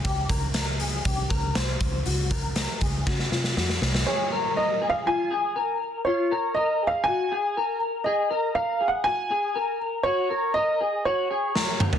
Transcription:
<<
  \new Staff \with { instrumentName = "Upright piano" } { \time 4/4 \key des \major \tempo 4 = 120 r1 | r1 | des''4 \tuplet 3/2 { ees''4 f''8 } aes''4. r8 | des''4 \tuplet 3/2 { ees''4 f''8 } aes''4. r8 |
ees''4 \tuplet 3/2 { f''4 ges''8 } aes''4. r8 | des''4 ees''4 des''4. r8 | }
  \new Staff \with { instrumentName = "Clean electric guitar" } { \time 4/4 \key des \major g'8 bes'8 bes'8 aes'8 g'8 bes'8 c''4 | ges'8 bes'8 bes'8 aes'8 ges'8 f'8 ges'4 | aes'8 bes'8 bes'8 aes'8 f'8 aes'8 bes'4 | f'8 bes'8 bes'8 aes'8 ges'8 aes'8 bes'4 |
aes'8 bes'8 bes'8 aes'8 ges'8 aes'8 bes'4 | ges'8 bes'8 bes'8 aes'8 ges'8 aes'8 bes'4 | }
  \new Staff \with { instrumentName = "Fingered electric bass" } { \clef bass \time 4/4 \key des \major des,8 des,4. c,8 des,8 c,8 des,8 | des,4~ des,16 r16 des,8 des8 c8 f,8 c,8 | r1 | r1 |
r1 | r1 | }
  \new DrumStaff \with { instrumentName = "Drums" } \drummode { \time 4/4 <hh bd>8 <hh bd>8 <hh sn>8 hh8 <hh bd>8 <hh bd>8 <hh sn>8 <hh bd>8 | hh8 <hh bd>8 <hh sn>8 <hh bd>8 <bd sn>16 sn16 sn16 sn16 sn16 sn16 sn16 sn16 | r4 r4 r4 r4 | r4 r4 r4 r4 |
r4 r4 r4 r4 | r4 r4 r4 sn8 toml16 tomfh16 | }
>>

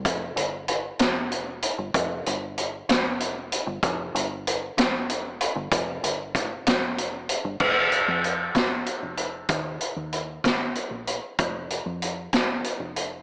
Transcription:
<<
  \new Staff \with { instrumentName = "Fingered electric bass" } { \clef bass \time 6/8 \key f \minor \tempo 4. = 64 f,,8 g,,4 f,,4~ f,,16 g,,16 | f,,8 g,,4 f,,4~ f,,16 g,,16 | f,,8 g,,4 f,,4~ f,,16 g,,16 | f,,8 g,,4 f,,4~ f,,16 g,,16 |
f,,8. f,8. f,,8 r16 f,,8. | ees,8 r16 ees,8. aes,,8 r16 bes,,8 r16 | f,,8. f,8. f,,8 r16 f,,8. | }
  \new DrumStaff \with { instrumentName = "Drums" } \drummode { \time 6/8 <hh bd>8 hh8 hh8 <hh sn>8 hh8 hh8 | <hh bd>8 hh8 hh8 <hh sn>8 hh8 hh8 | <hh bd>8 hh8 hh8 <hh sn>8 hh8 hh8 | <hh bd>8 hh8 <hh bd>8 <hh sn>8 hh8 hh8 |
<cymc bd>8 hh8 hh8 <hh bd sn>8 hh8 hh8 | <hh bd>8 hh8 hh8 <hh bd sn>8 hh8 hh8 | <hh bd>8 hh8 hh8 <hh bd sn>8 hh8 hh8 | }
>>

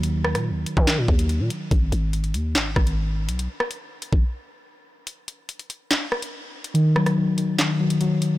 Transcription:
<<
  \new Staff \with { instrumentName = "Synth keys" } { \clef bass \time 4/4 \key ees \minor \tempo 4 = 143 r1 | r1 | r1 | r1 |
ees8 ges8 ees8 ees8 ees8 ges8 ges4 | }
  \new Staff \with { instrumentName = "808-style bass" } { \clef bass \time 4/4 \key ees \minor ees,8. bes,16. ees,16. r16 ees8 bes,16 ees,8. bes,16 r8 | aes,,8 aes,,4 ees,8 aes,,8 aes,,4~ aes,,16 ces,16~ | ces,16 r4. aes,,16 r2 | r1 |
r1 | }
  \new DrumStaff \with { instrumentName = "Drums" } \drummode { \time 4/4 hh8 ss16 <hh ss>16 r8 hh16 bd16 <hc hh sn>8 bd16 hh16 hh8 hh8 | <hh bd>8 hh8 hh16 hh16 hh8 <hc hh sn>8 <bd ss>16 hh16 r8. hh16 | hh8 ss16 hh16 r8 hh16 bd16 r4 r4 | hh8 hh8 hh16 hh16 hh8 <hc hh sn>8 ss16 hh16 r8. hh16 |
hh8 ss16 <hh ss>16 r8 hh8 <hc hh sn>8. hh16 hh8 hh8 | }
>>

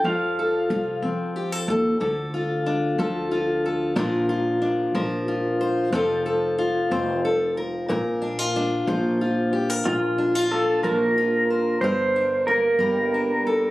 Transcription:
<<
  \new Staff \with { instrumentName = "Pedal steel guitar" } { \time 6/8 \key bes \major \tempo 4. = 61 f''4. r4. | r2. | r2. | r2. |
r2. | f'4 a'8 bes'4. | c''4 bes'2 | }
  \new Staff \with { instrumentName = "Steel-string acoustic guitar" } { \time 6/8 \key bes \major << { r8 a'8 f'4 g'16 a'16 a'8 | a'8 f'8 d'8 a'8 f'8 a'8 | <f d' f' bes'>8 f'8 d'8 bes'8 f'8 c''8 | <c' f' a'>8 a'8 f'8 c''8 a'8 bes'8 |
bes'8 d'16 f'16 d'8 c''8 f'8 g'16 bes'16 | r8 d'16 f'16 d'8 bes'8 f'8 c''8 | bes'8 d'8 bes8 bes'8 d'8 a'8 | } \\ { f4. c'4. | d4. f4. | bes,4. f4. | f4. c'4. |
bes,4. f4. | bes,4. f4. | g,4. g4. | } >> }
  \new Staff \with { instrumentName = "Upright bass" } { \clef bass \time 6/8 \key bes \major f,4 c,8 f4 ees,8 | d,4. d,4. | bes,,4. bes,,4. | f,,4. f,,4. |
bes,,4. bes,,4. | bes,,4. bes,,4. | g,,4. g,,4. | }
>>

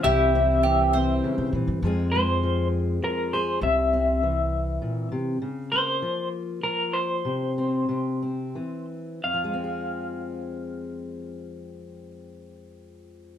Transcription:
<<
  \new Staff \with { instrumentName = "Clean electric guitar" } { \time 3/4 \key f \minor \tempo 4 = 98 e''2~ e''8 r8 | r8 c''4 r8 bes'8 c''8 | e''2~ e''8 r8 | r8 c''4 r8 bes'8 c''8~ |
c''2~ c''8 r8 | f''2.~ | f''2. | }
  \new Staff \with { instrumentName = "Mandolin" } { \time 3/4 \key f \minor e'4 g'8 c''4 r8 | r2. | r2. | r2. |
r2. | r2. | r2. | }
  \new Staff \with { instrumentName = "Resonator guitar played with a steel bar" } { \time 3/4 \key f \minor g'2~ g'8 r8 | r2. | r2. | r2. |
r2. | r2. | r2. | }
  \new Staff \with { instrumentName = "Tonewheel organ" } { \time 3/4 \key f \minor <e g g' c''>2. | r2. | r2. | r2. |
r2. | r2. | r2. | }
  \new Staff \with { instrumentName = "Steel-string acoustic guitar" } { \clef bass \time 3/4 \key f \minor << { r8 c'4 c'4. | <f aes c' aes'>8 aes2 aes'8 | r8 c'2~ c'8 | r8 bes2~ bes8 |
r8 c'8 r8 c'4. | <f aes c' aes'>2.~ | <f aes c' aes'>2. | } \\ { c4 e4 des8 e8 | f,4 f4 f4 | c4 e4 bes,8 c8 | des4 f4 f4 |
c4 c4 e4 | f,2.~ | f,2. | } >> }
  \new Staff \with { instrumentName = "Upright bass" } { \clef bass \time 3/4 \key f \minor c,2 r16 c16 bes,16 g,16 | f,2 r4 | c,2 r4 | r2. |
r2. | r2. | r2. | }
>>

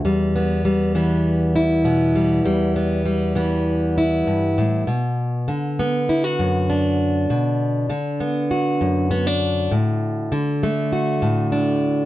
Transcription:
\new Staff \with { instrumentName = "Steel-string acoustic guitar" } { \clef bass \time 4/4 \key b \minor \tempo 4 = 99 << { g8 b8 g8 b4 e'8 b8 g8 | g8 b8 g8 b4 e'4. | r4. b8 e'16 fis'8. d'4 | r4. b8 fis'4 b16 d'8. |
r4. a8 fis'4 d'4 | } \\ { e,4. e4. b,4 | e,4. e4. g,8 a,8 | b,4 d4. fis,4. | b,4 d4. fis,4. |
a,4 d4. a,4. | } >> }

